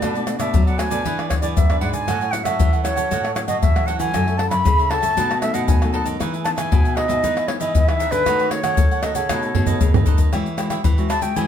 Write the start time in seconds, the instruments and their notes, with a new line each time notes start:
Already playing: nylon-string guitar A3 D4 F#4, flute D5
0.02 nylon-string guitar B2, cavaquinho D4 A4 B4 D5, pandeiro, tamborim, shaker, surdo
0.15 nylon-string guitar A3 D4 F#4, cavaquinho A4 B4 D5, pandeiro, shaker
0.27 nylon-string guitar A3 D4 F#4, muted cavaquinho stroke, pandeiro, tamborim, shaker
0.39 nylon-string guitar B2, cavaquinho A4 B4 D5, flute E5, pandeiro, tamborim, shaker
0.53 nylon-string guitar F#3, pandeiro, shaker, surdo
0.66 cavaquinho A4 B4 D5, flute F#5, pandeiro, shaker
0.78 nylon-string guitar A3 D4 F#4, cavaquinho D4 A4 B4 D5, flute G#5, pandeiro, tamborim, shaker
0.90 nylon-string guitar B2, cavaquinho A4 B4 D5, pandeiro, shaker
1.05 nylon-string guitar E3 B3 D4 G#4, cavaquinho E4 G#4 B4 D5, pandeiro, shaker, surdo
1.18 cavaquinho G#4 B4 D5, pandeiro, tamborim, shaker
1.29 nylon-string guitar B3 D4 G#4, flute C#5, pandeiro, tamborim, shaker, surdo
1.41 nylon-string guitar E3, cavaquinho G#4 B4 D5, flute D5, pandeiro, shaker
1.56 nylon-string guitar F#2 B2, flute E5, pandeiro, shaker, surdo
1.69 nylon-string guitar B3 D4 G#4, cavaquinho G#4 B4 D5, pandeiro, tamborim, shaker
1.80 nylon-string guitar G#2, cavaquinho E4 G#4 B4 D5, flute F#5, pandeiro
1.92 cavaquinho G#4 B4 D5, flute G#5, pandeiro, shaker
2.07 nylon-string guitar A2 F#3 C#4 E4, cavaquinho F#4 A4 C#5 F#5, pandeiro, tamborim, shaker, surdo
2.21 cavaquinho A4 C#5 F#5, pandeiro, shaker
2.31 nylon-string guitar F#3 C#4 E4, flute F#5, muted cavaquinho stroke, pandeiro, tamborim, shaker
2.44 nylon-string guitar A2, cavaquinho A4 C#5 F#5, flute E5, pandeiro, tamborim, shaker
2.59 nylon-string guitar E3, pandeiro, shaker, surdo
2.72 cavaquinho A4 C#5 F#5, pandeiro, shaker
2.83 nylon-string guitar F#3 C#4 E4, cavaquinho F#4 A4 C#5 F#5, flute C#5, pandeiro, tamborim, shaker
2.96 nylon-string guitar E3, cavaquinho A4 C#5 F#5, pandeiro, shaker
3.10 nylon-string guitar A2, cavaquinho F#4 A4 C#5 F#5, pandeiro, shaker, surdo
3.24 cavaquinho A4 C#5 F#5, pandeiro, tamborim, shaker
3.35 nylon-string guitar F#3 C#4 E4, flute C#5, pandeiro, tamborim, shaker
3.47 nylon-string guitar A2, cavaquinho A4 C#5 F#5, flute D#5, pandeiro, shaker
3.61 nylon-string guitar E3, flute E5, pandeiro, shaker, surdo
3.75 nylon-string guitar F#3 C#4 E4, cavaquinho A4 C#5 F#5, pandeiro, tamborim, shaker
3.86 cavaquinho F#4 A4 C#5 F#5, flute F#5, pandeiro, shaker
3.99 nylon-string guitar E3, cavaquinho A4 C#5 F#5, flute G#5, pandeiro, shaker
4.13 nylon-string guitar F#2 F#3 C#4 E4 A4, cavaquinho F#4 A4 C#5 E5, pandeiro, tamborim, shaker, surdo
4.27 nylon-string guitar C#4 E4 A4, cavaquinho A4 C#5 E5, pandeiro, shaker
4.38 nylon-string guitar C#4 E4 A4, flute A5, muted cavaquinho stroke, pandeiro, tamborim
4.50 nylon-string guitar F#2, cavaquinho A4 C#5 E5, flute B5, pandeiro, tamborim, shaker
4.65 nylon-string guitar C#3, pandeiro, shaker, surdo
4.78 cavaquinho A4 C#5 E5, pandeiro, shaker
4.90 nylon-string guitar C#4 E4 A4, cavaquinho F#4 A4 C#5 E5, flute A5, pandeiro, tamborim
5.02 nylon-string guitar A2, cavaquinho A4 C#5 E5, pandeiro, shaker
5.16 nylon-string guitar B2 F#3 A3 D#4, cavaquinho D#4 A4 B4 D#5, pandeiro, shaker, surdo
5.30 cavaquinho A4 B4 D#5, pandeiro, tamborim, shaker
5.42 nylon-string guitar F#3 A3 D#4, flute E5, pandeiro, tamborim, shaker
5.54 nylon-string guitar B2, cavaquinho A4 B4 D#5, flute F#5, pandeiro, shaker
5.67 nylon-string guitar F#2, flute G#5, pandeiro, shaker, surdo
5.82 nylon-string guitar F#3 A3 D#4, cavaquinho A4 B4 D#5, pandeiro, tamborim, shaker
5.93 cavaquinho D#4 A4 B4 D#5, flute A5, pandeiro
6.05 nylon-string guitar D#3, cavaquinho A4 B4 D#5, pandeiro, shaker
6.19 nylon-string guitar E3 B3 D#4 G#4, cavaquinho D#4 G#4 B4 E5, pandeiro, tamborim, shaker, surdo
6.33 cavaquinho G#4 B4 E5, pandeiro, shaker
6.44 nylon-string guitar B3 D#4 G#4, flute A5, muted cavaquinho stroke, pandeiro, tamborim, shaker
6.56 nylon-string guitar E3, cavaquinho G#4 B4 E5, flute G#5, pandeiro, tamborim, shaker
6.71 nylon-string guitar B2, pandeiro, shaker, surdo
6.84 cavaquinho G#4 B4 E5, pandeiro, shaker
6.96 nylon-string guitar B3 D#4 G#4, cavaquinho D#4 G#4 B4 E5, flute D#5, pandeiro, tamborim
7.08 nylon-string guitar B2 B3 D#4 G#4, cavaquinho G#4 B4 E5, pandeiro, shaker
7.23 nylon-string guitar E3, cavaquinho D#4 G#4 B4 E5, pandeiro, shaker, surdo
7.36 cavaquinho G#4 B4 E5, pandeiro, tamborim, shaker
7.48 nylon-string guitar B3 D#4 G#4, flute C#5, pandeiro, tamborim
7.60 nylon-string guitar E3, cavaquinho G#4 B4 E5, flute D#5, pandeiro, shaker
7.75 nylon-string guitar B2, pandeiro, shaker, surdo
7.87 nylon-string guitar B3 D#4 G#4, cavaquinho G#4 B4 E5, flute E5, pandeiro, tamborim, shaker
7.99 cavaquinho D#4 G#4 B4 E5, pandeiro, shaker
8.11 nylon-string guitar D3, cavaquinho G#4 B4 E5, flute B4, pandeiro, shaker
8.26 nylon-string guitar D#3 A3 C#4 F#4, cavaquinho D#4 A4 C#5 F#5, pandeiro, tamborim, shaker, surdo
8.39 cavaquinho A4 C#5 F#5, pandeiro, shaker
8.51 nylon-string guitar A3 C#4 F#4, flute C#5, muted cavaquinho stroke, pandeiro, tamborim, shaker
8.63 nylon-string guitar D#3, cavaquinho A4 C#5 F#5, pandeiro, tamborim, shaker
8.77 nylon-string guitar D#3 A3, pandeiro, shaker, surdo
8.91 cavaquinho A4 C#5 F#5, pandeiro, shaker
9.03 nylon-string guitar A3 C#4 F#4, cavaquinho D#4 A4 C#5 F#5, flute D#5, pandeiro, tamborim, shaker
9.15 nylon-string guitar C#3, cavaquinho A4 C#5 F#5, flute C#5, pandeiro, shaker
9.29 nylon-string guitar B2 A3 D#4 G#4, cavaquinho D#4 A4 B4 D#5, pandeiro, tamborim, shaker, surdo
9.42 cavaquinho A4 B4 D#5, pandeiro, shaker
9.55 nylon-string guitar B2 A3 D#4 G#4, surdo, pandeiro
9.66 cavaquinho A4 B4 D#5, surdo, pandeiro, shaker
9.81 nylon-string guitar F#2 C#3, pandeiro, shaker, surdo
9.94 nylon-string guitar A3 D#4 G#4, cavaquinho A4 B4 D#5, surdo, pandeiro, shaker
10.06 nylon-string guitar D#3, cavaquinho D#4 A4 B4 D#5, pandeiro, shaker, surdo
10.18 cavaquinho A4 B4 D#5, pandeiro, shaker, surdo
10.32 nylon-string guitar E3 G#3 C#4 F#4, cavaquinho E4 G#4 C#5 E5, pandeiro, tamborim, low agogo, shaker, surdo
10.46 pandeiro, shaker
10.57 nylon-string guitar G#3 C#4 F#4, cavaquinho E4 G#4 C#5 E5, pandeiro, tamborim, low agogo, shaker
10.70 cavaquinho E4 G#4 C#5 E5, pandeiro, tamborim, low agogo, shaker
10.84 nylon-string guitar B2 E3, pandeiro, high agogo, shaker, surdo
10.97 nylon-string guitar G#3 C#4 F#4, cavaquinho G#4 C#5 E5, pandeiro, shaker
11.09 cavaquinho E4 G#4 C#5 E5, flute A5, pandeiro, tamborim, high agogo, shaker
11.21 nylon-string guitar G#3 C#4 F#4, cavaquinho G#4 C#5 E5, flute G5, pandeiro, shaker
11.35 nylon-string guitar E3 G#3 C#4 F#4, cavaquinho E4 G#4 C#5 E5, flute G#5, pandeiro, low agogo, shaker, surdo